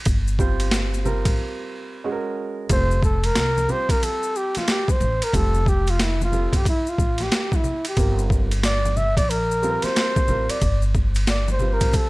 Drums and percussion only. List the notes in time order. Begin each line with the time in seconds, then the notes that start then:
0.05 kick, ride, maracas
0.28 maracas
0.39 kick, maracas
0.60 ride, maracas
0.71 snare, hi-hat pedal, ride, maracas
0.94 maracas
1.05 high conga, low conga, maracas
1.25 kick, ride, maracas
2.69 kick, ride, maracas
2.91 maracas
3.03 kick, maracas
3.23 ride, maracas
3.35 snare, hi-hat pedal, ride, maracas
3.58 high conga, maracas
3.69 high conga, low conga, maracas
3.89 kick, ride, maracas
4.03 ride, high conga, maracas
4.23 maracas
4.36 maracas
4.55 snare, ride, high conga, maracas
4.68 snare, hi-hat pedal, ride, maracas
4.88 kick, high conga, maracas
5.01 low conga, maracas
5.22 ride, maracas
5.34 kick, ride, maracas
5.54 maracas
5.66 kick, maracas
5.87 ride, maracas
6.00 snare, hi-hat pedal, ride, maracas
6.21 high conga, maracas
6.33 high conga, low conga, maracas
6.53 kick, ride, maracas
6.65 kick, ride, high conga, maracas
6.87 maracas
6.98 kick, maracas
7.18 snare, ride, high conga, maracas
7.32 snare, hi-hat pedal, ride, maracas
7.52 kick, high conga, maracas
7.64 low conga, maracas
7.85 ride, maracas
7.97 kick, ride, maracas
8.19 maracas
8.30 kick, maracas
8.51 ride, maracas
8.63 snare, hi-hat pedal, ride, maracas
8.85 high conga, maracas
8.97 high conga, low conga, maracas
9.17 kick, ride, maracas
9.30 ride, high conga, maracas
9.51 maracas
9.63 maracas
9.82 snare, ride, high conga, maracas
9.96 snare, hi-hat pedal, ride, maracas
10.16 kick, high conga, maracas
10.28 low conga, maracas
10.49 ride, maracas
10.62 kick, ride, maracas
10.82 maracas
10.95 kick, maracas
11.15 ride, maracas
11.27 snare, hi-hat pedal, ride, maracas
11.48 high conga, maracas
11.59 high conga, low conga, maracas
11.80 kick, ride, maracas
11.93 kick, ride, high conga, low conga, maracas